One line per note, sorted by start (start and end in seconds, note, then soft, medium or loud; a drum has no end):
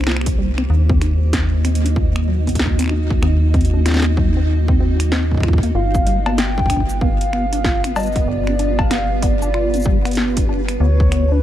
0.00 0.67 C2 medium
0.00 5.71 A#3 medium
0.00 0.66 D#4 medium
0.00 0.66 G4 medium
0.00 0.66 C5 medium
0.00 finger snap soft
0.04 finger snap soft
0.07 0.28 F4 medium
0.07 finger snap medium
0.07 snare loud
0.12 finger snap medium
0.17 finger snap medium
0.21 finger snap medium
0.26 0.34 C4 medium
0.26 kick loud
0.26 closed hi-hat loud
0.38 0.51 G3 medium
0.58 0.63 C4 medium
0.58 finger snap medium
0.70 3.20 D#2 medium
0.70 5.71 D#4 medium
0.70 5.71 F#4 medium
0.70 5.71 D#5 medium
0.89 1.01 C4 loud
0.89 kick loud
1.01 1.14 D#4 medium
1.01 finger snap medium
1.01 closed hi-hat medium
1.33 1.41 C4 loud
1.33 kick loud
1.33 snare loud
1.33 closed hi-hat medium
1.65 1.78 C4 medium
1.65 finger snap soft
1.65 closed hi-hat medium
1.75 closed hi-hat medium
1.84 1.92 D4 medium
1.84 closed hi-hat medium
1.96 2.17 F4 medium
1.96 kick loud
2.16 2.24 C4 medium
2.16 finger snap medium
2.28 2.41 F#3 medium
2.47 2.52 C4 medium
2.47 kick soft
2.47 closed hi-hat soft
2.49 closed hi-hat soft
2.55 kick medium
2.55 closed hi-hat medium
2.59 snare loud
2.66 kick medium
2.79 2.90 C4 loud
2.79 finger snap soft
2.79 closed hi-hat medium
2.81 finger snap soft
2.83 finger snap soft
2.84 finger snap soft
2.86 finger snap soft
2.88 finger snap soft
2.89 3.04 D#4 medium
2.89 finger snap soft
3.10 kick loud
3.22 5.73 D#2 medium
3.22 3.30 C4 loud
3.22 finger snap medium
3.54 3.67 C4 medium
3.54 kick loud
3.54 closed hi-hat soft
3.61 closed hi-hat soft
3.65 closed hi-hat soft
3.74 3.81 D4 medium
3.85 4.07 F4 medium
3.85 finger snap medium
3.85 snare medium
3.85 closed hi-hat medium
3.88 snare medium
3.91 snare medium
3.94 snare medium
3.97 snare medium
4.00 snare loud
4.02 4.13 C4 medium
4.02 snare loud
4.17 4.30 F#3 medium
4.17 kick loud
4.37 4.41 C4 medium
4.68 4.80 C4 loud
4.68 kick loud
4.80 4.99 C4 medium
5.00 finger snap soft
5.00 closed hi-hat medium
5.12 5.25 C4 loud
5.12 snare loud
5.31 kick medium
5.34 kick medium
5.37 kick medium
5.40 5.62 F4 medium
5.40 finger snap medium
5.40 kick medium
5.43 kick medium
5.48 kick medium
5.53 kick medium
5.58 kick loud
5.63 5.71 A#3 medium
5.63 closed hi-hat soft
5.75 8.25 G1 medium
5.75 10.76 B3 medium
5.75 5.96 F4 medium
5.75 10.76 F4 medium
5.75 10.76 G4 medium
5.75 11.43 B4 medium
5.75 6.34 F5 loud
5.95 6.03 B3 medium
5.95 kick loud
5.95 cabasa medium
6.07 6.19 G3 medium
6.07 closed hi-hat soft
6.26 6.59 B3 medium
6.26 finger snap soft
6.26 cowbell medium
6.38 6.97 G5 loud
6.38 snare loud
6.38 closed hi-hat medium
6.58 6.66 D4 medium
6.58 kick loud
6.58 kick medium
6.66 kick medium
6.70 6.83 D4 medium
6.70 finger snap medium
6.70 kick medium
6.70 closed hi-hat medium
6.76 kick soft
6.80 kick soft
6.89 cabasa medium
7.01 7.09 B3 loud
7.01 7.98 F5 loud
7.01 kick loud
7.21 closed hi-hat soft
7.33 7.46 B3 medium
7.33 finger snap medium
7.53 7.60 D4 medium
7.53 closed hi-hat medium
7.64 7.86 F4 medium
7.64 kick loud
7.64 snare loud
7.84 7.92 B3 medium
7.84 finger snap medium
7.84 closed hi-hat medium
7.96 8.09 G3 medium
7.96 8.29 D#5 loud
7.96 cowbell medium
7.96 cabasa medium
7.99 cabasa medium
8.03 cabasa medium
8.06 cabasa soft
8.12 8.49 B3 medium
8.12 kick loud
8.12 closed hi-hat soft
8.12 cabasa soft
8.28 10.78 G1 medium
8.28 8.80 D5 loud
8.47 8.55 D4 medium
8.47 finger snap medium
8.59 8.72 D4 medium
8.59 closed hi-hat soft
8.79 9.24 F5 loud
8.79 kick loud
8.79 cowbell medium
8.91 8.99 B3 loud
8.91 finger snap medium
8.91 snare loud
8.91 closed hi-hat medium
9.22 9.35 B3 medium
9.22 10.17 D5 medium
9.22 kick loud
9.22 closed hi-hat medium
9.42 9.50 D4 medium
9.42 cabasa medium
9.54 9.75 F4 medium
9.54 finger snap soft
9.74 9.82 B3 medium
9.74 closed hi-hat soft
9.74 cabasa soft
9.75 cabasa soft
9.80 cabasa soft
9.82 cabasa soft
9.84 9.98 G3 medium
9.84 kick loud
9.84 cabasa medium
10.05 10.38 B3 medium
10.05 finger snap medium
10.05 closed hi-hat soft
10.07 closed hi-hat soft
10.11 closed hi-hat medium
10.13 closed hi-hat medium
10.15 snare loud
10.15 closed hi-hat medium
10.37 10.45 D4 medium
10.37 kick loud
10.37 closed hi-hat medium
10.49 10.62 D4 medium
10.69 finger snap soft
10.69 closed hi-hat soft
10.80 11.43 D2 medium
10.80 11.43 A3 medium
10.80 10.88 B3 loud
10.80 11.43 E4 medium
10.80 11.43 F#4 medium
10.80 11.33 C#5 loud
11.00 kick loud
11.12 11.25 B3 medium
11.12 finger snap medium
11.12 closed hi-hat medium
11.32 11.40 D4 medium
11.32 11.43 B4 medium